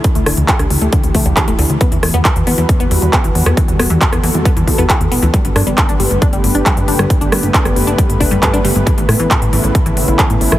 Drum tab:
HH |xxoxxxoxxxoxxxox|xxoxxxoxxxoxxxox|xxoxxxoxxxoxxxox|xxoxxxoxxxoxxxox|
CP |----x-------x---|----x-------x---|----x-------x---|----x-------x---|
SD |--r--r----------|--r------------r|--r--r----------|--r------------r|
BD |o---o---o-o-o---|o---o---o---o---|o---o---o-o-o---|o---o---o---o---|

HH |xxoxxxoxxxoxxxox|xxoxxxoxxxoxxxox|
CP |----x-------x---|----x-------x---|
SD |--r--r----------|--r------------r|
BD |o---o---o-o-o---|o---o---o---o---|